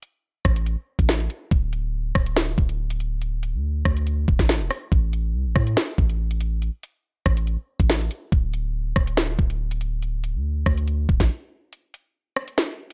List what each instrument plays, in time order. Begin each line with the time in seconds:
0.03 closed hi-hat
0.45 808-style bass A1, kick, cross-stick
0.56 closed hi-hat
0.66 closed hi-hat
0.99 808-style bass A1, kick, closed hi-hat
1.09 snare, closed hi-hat
1.20 closed hi-hat
1.30 closed hi-hat
1.51 808-style bass D1, kick, closed hi-hat
1.73 closed hi-hat
2.15 808-style bass D1, kick, cross-stick
2.26 closed hi-hat
2.36 snare, closed hi-hat
2.58 808-style bass D1, kick
2.69 closed hi-hat
2.90 closed hi-hat
3.00 closed hi-hat
3.22 closed hi-hat
3.43 closed hi-hat
3.54 808-style bass D2
3.85 808-style bass D2, kick, cross-stick
3.97 closed hi-hat
4.07 closed hi-hat
4.28 808-style bass D1, kick
4.39 808-style bass A1, kick, snare, closed hi-hat
4.49 snare, closed hi-hat
4.61 808-style bass E1, closed hi-hat
4.70 cross-stick, open hi-hat
4.92 808-style bass A1, kick, closed hi-hat
5.13 closed hi-hat
5.34 808-style bass C2
5.46 808-style bass A1
5.56 808-style bass A2, kick, cross-stick
5.67 closed hi-hat
5.77 snare, closed hi-hat
5.98 808-style bass A1, kick
6.10 closed hi-hat
6.31 closed hi-hat
6.41 closed hi-hat
6.62 closed hi-hat
6.83 closed hi-hat
7.26 808-style bass A1, kick, cross-stick
7.37 closed hi-hat
7.47 closed hi-hat
7.80 808-style bass A1, kick, closed hi-hat
7.90 snare, closed hi-hat
8.01 closed hi-hat
8.11 closed hi-hat
8.32 808-style bass D1, kick, closed hi-hat
8.54 closed hi-hat
8.96 808-style bass D1, kick, cross-stick
9.07 closed hi-hat
9.17 snare, closed hi-hat
9.39 808-style bass D1, kick
9.50 closed hi-hat
9.71 closed hi-hat
9.81 closed hi-hat
10.02 closed hi-hat
10.24 closed hi-hat
10.35 808-style bass D2
10.66 808-style bass D2, kick, cross-stick
10.78 closed hi-hat
10.88 closed hi-hat
11.09 808-style bass D1, kick
11.20 808-style bass A1, kick, snare, closed hi-hat
11.73 closed hi-hat
11.94 closed hi-hat
12.36 cross-stick
12.48 closed hi-hat
12.58 snare, closed hi-hat